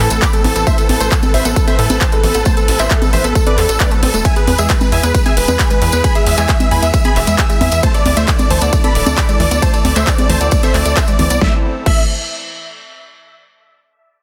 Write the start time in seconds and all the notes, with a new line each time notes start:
Already playing: E3 B3 C4 A4
0.10 A1 A3 A4, closed hi-hat, tambourine
0.22 A4 B5 D6, kick, clap, closed hi-hat, tambourine
0.33 G#3 A4, closed hi-hat, tambourine
0.44 A1 E3 A4, open hi-hat, high conga
0.56 A1 B3 A4, closed hi-hat, tambourine
0.67 A3 B4 C5 E5, kick, closed hi-hat, tambourine
0.78 A4, closed hi-hat, tambourine
0.89 A1 A4, open hi-hat, high conga
1.00 A1 A3 A4 C5, closed hi-hat, tambourine
1.12 A4, kick, clap, closed hi-hat, tambourine
1.22 G#3 A4, closed hi-hat, tambourine, high conga
1.34 A1 E3 C5 E5, open hi-hat
1.45 A1 B3 A4, closed hi-hat, tambourine
1.56 A3 A4, kick, closed hi-hat, tambourine
1.68 A4 C5 E5, closed hi-hat, tambourine, high conga
1.79 A2 A4, open hi-hat
1.90 A1 A3 A4, closed hi-hat, tambourine, high conga
2.01 A4 C5 A5, kick, clap, closed hi-hat, tambourine
2.12 G#3 A4, closed hi-hat, tambourine
2.23 A1 E3 A4, open hi-hat
2.34 A1 B3 A4, closed hi-hat, tambourine
2.45 A3 C5 A5, kick, closed hi-hat, tambourine
2.57 A4, closed hi-hat, tambourine
2.68 A1 A4, open hi-hat
2.79 A1 A3 C5 E5, clap, closed hi-hat, tambourine
2.90 A4, kick, clap, closed hi-hat, tambourine
3.02 G#3 A4, closed hi-hat, tambourine, high conga
3.13 A1 E3 C5 E5, open hi-hat
3.24 A1 B3 A4, closed hi-hat, tambourine
3.35 A3 A4, kick, closed hi-hat, tambourine
3.46 A4 B4 D5, closed hi-hat, tambourine, high conga
3.58 E2 A4, clap, open hi-hat
3.69 A1 A4, closed hi-hat, tambourine
3.80 A3 B4 D5, kick, clap, closed hi-hat, tambourine
3.90 A3 A4, closed hi-hat, tambourine
4.03 A1 C4 A4, open hi-hat, high conga
4.14 E1 A3 A4, closed hi-hat, tambourine
4.25 E3 G#3 G#4 E5 G#5, kick, closed hi-hat, ride, tambourine
4.36 G#4 B4, closed hi-hat, tambourine
4.47 E2 B4, open hi-hat, high conga
4.58 E2 G#3 G#4 E5, closed hi-hat, tambourine
4.69 G#4 B4, kick, clap, closed hi-hat, ride, tambourine
4.81 G#3 B4, closed hi-hat, tambourine, high conga
4.92 E2 E3 E5 G#5, open hi-hat
5.03 E2 B3 B4, closed hi-hat, tambourine
5.14 G#3 B4, kick, closed hi-hat, ride, tambourine
5.26 G#4 E5 G#5, closed hi-hat, tambourine, high conga
5.37 E1 B4, open hi-hat
5.48 E2 G#3 B4, closed hi-hat, tambourine, high conga
5.59 G#4 G#5 B5, kick, clap, closed hi-hat, ride, tambourine
5.70 G#3 B4, closed hi-hat, tambourine
5.82 E2 E3 B4, open hi-hat
5.92 E2 B3 B4, closed hi-hat, tambourine
6.04 G#3 G#5 B5, kick, closed hi-hat, ride, tambourine
6.15 G#4 E5, closed hi-hat, tambourine
6.26 E2 E5, open hi-hat
6.38 E2 G#3 E5 G#5, clap, closed hi-hat, tambourine
6.48 G#4 E5, kick, clap, closed hi-hat, ride, tambourine
6.60 G#3 E5, closed hi-hat, tambourine, high conga
6.71 E2 E3 G#5 B5, open hi-hat
6.82 E2 B3 E5, closed hi-hat, tambourine
6.94 G#3 E5, kick, closed hi-hat, ride, tambourine
7.04 G#4 G#5 B5, closed hi-hat, tambourine, high conga
7.16 E1 E5, clap, open hi-hat
7.27 E2 G#3 E5, closed hi-hat, tambourine
7.38 G#4 G#5 E6, kick, clap, closed hi-hat, ride, tambourine
7.49 G#3 E5, closed hi-hat, tambourine
7.61 E2 E3 E5, open hi-hat, high conga
7.72 E2 B3 E5, closed hi-hat, tambourine
7.83 A3 D4 A4 C5 A5, kick, closed hi-hat, ride, tambourine
7.94 A4 D5, closed hi-hat, tambourine
8.06 D2 D5, open hi-hat, high conga
8.17 D2 A3 C5 E5, closed hi-hat, tambourine
8.28 A4 D5, kick, clap, closed hi-hat, ride, tambourine
8.38 G#3 D5, closed hi-hat, tambourine, high conga
8.50 D2 E3 C5 A5, open hi-hat
8.61 D2 B3 D5, closed hi-hat, tambourine
8.73 A3 D5, kick, closed hi-hat, ride, tambourine
8.84 A4 D5 B5, closed hi-hat, tambourine, high conga
8.95 D1 D5, open hi-hat
9.06 D2 A3 D5, closed hi-hat, tambourine, high conga
9.17 A4 B5 D6, kick, clap, closed hi-hat, ride, tambourine
9.29 G#3 D5, closed hi-hat, tambourine
9.40 D2 E3 D5, open hi-hat
9.51 D2 B3 D5, closed hi-hat, tambourine
9.62 A3 C4 C5 A5, kick, closed hi-hat, ride, tambourine
9.73 A4 D5, closed hi-hat, tambourine
9.85 D2 D5, open hi-hat, high conga
9.96 D2 A3 C5 E5, clap, closed hi-hat, tambourine
10.07 A4 D5, kick, clap, closed hi-hat, ride, tambourine
10.18 G#3 D5, closed hi-hat, tambourine, high conga
10.29 D2 E3 C5 A5, open hi-hat
10.41 D2 B3 D5, closed hi-hat, tambourine
10.51 A3 D5, kick, closed hi-hat, ride, tambourine
10.63 A4 C5 E5, closed hi-hat, tambourine, high conga
10.74 D2 D5, clap, open hi-hat
10.85 D2 A3 D5, closed hi-hat, tambourine
10.97 A4 C5 E5, kick, clap, closed hi-hat, ride, tambourine
11.07 G#3 D5, closed hi-hat, tambourine
11.19 D2 E3 D5, open hi-hat, high conga
11.30 C2 B3 D5, closed hi-hat, tambourine
11.41 E3 A3 B3 C4 A4 E5, kick, snare
11.86 A1 A3 E5, kick, crash